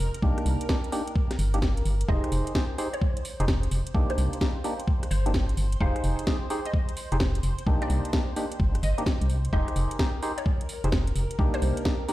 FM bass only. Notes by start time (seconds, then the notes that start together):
0.00 F1
0.22 C2
0.46 C2
1.39 G1
1.85 G1
2.09 F1
2.32 F1
3.40 F1
3.71 F1
3.95 C2
4.18 C2
5.11 G1
5.57 G1
5.81 F1
6.04 F1
7.12 F1
7.43 F1
7.67 C2
7.90 C2
8.60 G1
8.83 G1
9.21 C2
9.53 F1
9.76 F1
10.84 F1
11.16 F1
11.39 C2
11.62 C2